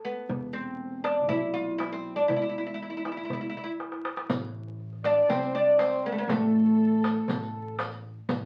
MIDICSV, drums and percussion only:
0, 0, Header, 1, 3, 480
1, 0, Start_track
1, 0, Tempo, 500000
1, 276, Time_signature, 4, 2, 24, 8
1, 8114, End_track
2, 0, Start_track
2, 0, Title_t, "Darbuka"
2, 284, Note_on_c, 9, 64, 78
2, 380, Note_off_c, 9, 64, 0
2, 758, Note_on_c, 9, 62, 23
2, 854, Note_off_c, 9, 62, 0
2, 877, Note_on_c, 9, 62, 24
2, 973, Note_off_c, 9, 62, 0
2, 1005, Note_on_c, 9, 63, 64
2, 1101, Note_off_c, 9, 63, 0
2, 1245, Note_on_c, 9, 64, 79
2, 1341, Note_off_c, 9, 64, 0
2, 1729, Note_on_c, 9, 63, 63
2, 1825, Note_off_c, 9, 63, 0
2, 1849, Note_on_c, 9, 62, 21
2, 1945, Note_off_c, 9, 62, 0
2, 2206, Note_on_c, 9, 64, 82
2, 2302, Note_off_c, 9, 64, 0
2, 2446, Note_on_c, 9, 62, 23
2, 2542, Note_off_c, 9, 62, 0
2, 2564, Note_on_c, 9, 62, 26
2, 2660, Note_off_c, 9, 62, 0
2, 2682, Note_on_c, 9, 62, 24
2, 2778, Note_off_c, 9, 62, 0
2, 2811, Note_on_c, 9, 62, 25
2, 2907, Note_off_c, 9, 62, 0
2, 2929, Note_on_c, 9, 63, 55
2, 3025, Note_off_c, 9, 63, 0
2, 3168, Note_on_c, 9, 64, 78
2, 3264, Note_off_c, 9, 64, 0
2, 3289, Note_on_c, 9, 62, 26
2, 3385, Note_off_c, 9, 62, 0
2, 3416, Note_on_c, 9, 62, 24
2, 3512, Note_off_c, 9, 62, 0
2, 3648, Note_on_c, 9, 63, 51
2, 3744, Note_off_c, 9, 63, 0
2, 3762, Note_on_c, 9, 62, 54
2, 3858, Note_off_c, 9, 62, 0
2, 3888, Note_on_c, 9, 63, 68
2, 3984, Note_off_c, 9, 63, 0
2, 4005, Note_on_c, 9, 62, 78
2, 4101, Note_off_c, 9, 62, 0
2, 4123, Note_on_c, 9, 64, 90
2, 4219, Note_off_c, 9, 64, 0
2, 4488, Note_on_c, 9, 62, 24
2, 4584, Note_off_c, 9, 62, 0
2, 4607, Note_on_c, 9, 62, 26
2, 4703, Note_off_c, 9, 62, 0
2, 4729, Note_on_c, 9, 62, 25
2, 4825, Note_off_c, 9, 62, 0
2, 5079, Note_on_c, 9, 64, 77
2, 5175, Note_off_c, 9, 64, 0
2, 5327, Note_on_c, 9, 62, 27
2, 5423, Note_off_c, 9, 62, 0
2, 5559, Note_on_c, 9, 63, 73
2, 5655, Note_off_c, 9, 63, 0
2, 5790, Note_on_c, 9, 62, 26
2, 5886, Note_off_c, 9, 62, 0
2, 6036, Note_on_c, 9, 64, 81
2, 6132, Note_off_c, 9, 64, 0
2, 6397, Note_on_c, 9, 62, 27
2, 6493, Note_off_c, 9, 62, 0
2, 6517, Note_on_c, 9, 62, 27
2, 6613, Note_off_c, 9, 62, 0
2, 6644, Note_on_c, 9, 62, 27
2, 6740, Note_off_c, 9, 62, 0
2, 6759, Note_on_c, 9, 63, 74
2, 6855, Note_off_c, 9, 63, 0
2, 6988, Note_on_c, 9, 64, 79
2, 7084, Note_off_c, 9, 64, 0
2, 7235, Note_on_c, 9, 62, 26
2, 7331, Note_off_c, 9, 62, 0
2, 7475, Note_on_c, 9, 63, 81
2, 7571, Note_off_c, 9, 63, 0
2, 7600, Note_on_c, 9, 62, 23
2, 7696, Note_off_c, 9, 62, 0
2, 7716, Note_on_c, 9, 62, 25
2, 7812, Note_off_c, 9, 62, 0
2, 7957, Note_on_c, 9, 64, 86
2, 8053, Note_off_c, 9, 64, 0
2, 8114, End_track
3, 0, Start_track
3, 0, Title_t, "Riq"
3, 4124, Note_on_c, 9, 54, 61
3, 4220, Note_off_c, 9, 54, 0
3, 4842, Note_on_c, 9, 54, 45
3, 4938, Note_off_c, 9, 54, 0
3, 5086, Note_on_c, 9, 54, 63
3, 5182, Note_off_c, 9, 54, 0
3, 5209, Note_on_c, 9, 54, 18
3, 5305, Note_off_c, 9, 54, 0
3, 5561, Note_on_c, 9, 54, 49
3, 5657, Note_off_c, 9, 54, 0
3, 5680, Note_on_c, 9, 54, 17
3, 5776, Note_off_c, 9, 54, 0
3, 6042, Note_on_c, 9, 54, 62
3, 6138, Note_off_c, 9, 54, 0
3, 6762, Note_on_c, 9, 54, 42
3, 6858, Note_off_c, 9, 54, 0
3, 7002, Note_on_c, 9, 54, 59
3, 7098, Note_off_c, 9, 54, 0
3, 7130, Note_on_c, 9, 54, 20
3, 7226, Note_off_c, 9, 54, 0
3, 7481, Note_on_c, 9, 54, 47
3, 7577, Note_off_c, 9, 54, 0
3, 7596, Note_on_c, 9, 54, 18
3, 7692, Note_off_c, 9, 54, 0
3, 7958, Note_on_c, 9, 54, 57
3, 8054, Note_off_c, 9, 54, 0
3, 8114, End_track
0, 0, End_of_file